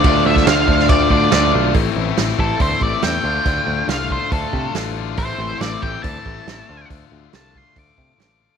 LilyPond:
<<
  \new Staff \with { instrumentName = "String machine" } { \time 4/4 \key d \minor \tempo 4 = 140 <f' d'' g'' a''>1 | r1 | r1 | r1 |
r1 | }
  \new Staff \with { instrumentName = "Lead electric guitar" } { \time 4/4 \key d \minor d''8 e''8 f''4 d''8 d''4 r8 | r4. a'8 c''8 d''8 g''4~ | g''4 f''8 c''8 a'4 r4 | c''4 d''8 g''8 a''2 |
r4 a''8 c'''8 d'''4 d'''4 | }
  \new Staff \with { instrumentName = "Overdriven electric guitar" } { \time 4/4 \key d \minor <d a d' f'>8 <a d' f'>8 <d a d' f'>4. <a d' f'>8 <d a d' f'>8 <a d' f'>8 | <a, e a c' e'>4 <e a c' e'>8 <a c' e'>8 <e a c' e'>4 <a, e a c' e'>8 <d a d' f'>8 | <d a d' f'>4 <d a d' f'>8 <a d' f'>8 <d a d' f'>4 <d a d' f'>8 <a d' f'>8 | <a, e a c' e'>4 <e a c' e'>8 <a c' e'>8 <e a c' e'>4 <a, e a c' e'>8 <d a d' f'>8 |
<d a d' f'>4 <d a d' f'>8 <a d' f'>8 <d a d' f'>4 <d a d' f'>8 <a d' f'>8 | }
  \new Staff \with { instrumentName = "Overdriven electric guitar" } { \time 4/4 \key d \minor <f a d'>4 <f a d'>8 <a d'>4. <f a d'>8 <a d'>8 | r1 | r1 | r1 |
r1 | }
  \new Staff \with { instrumentName = "Picked electric bass" } { \clef bass \time 4/4 \key d \minor d,8 d,8 d,8 d,8 d,8 d,8 d,8 b,,8 | a,,8 a,,8 a,,8 a,,8 d,8 a,,8 e,8 d,8 | d,8 d,8 c,4 d,8 c8 a,,4 | a,,8 a,,8 a,,8 a,,8 d,8 a,,8 a,,8 d,8 |
d,8 d,8 c,4 d,8 c8 a,,4 | }
  \new DrumStaff \with { instrumentName = "Drums" } \drummode { \time 4/4 <cymc bd>8. <bd sn>16 <cymc sn>8 bd16 sn16 <cymc bd>8 bd8 <cymc sn>4 | <hho bd>4 <hho sn>16 sn16 bd8 <hho bd>8 bd8 <hho sn>4 | <hho bd>4 <hho sn>8 bd8 <hho bd>8 bd8 <hho sn>4 | <hho bd>4 <hho sn>8 bd8 <hho bd>8 bd8 <hho sn>4 |
<hho bd>4 <hho sn>8 bd8 <hho bd>8 bd8 <hho sn>4 | }
>>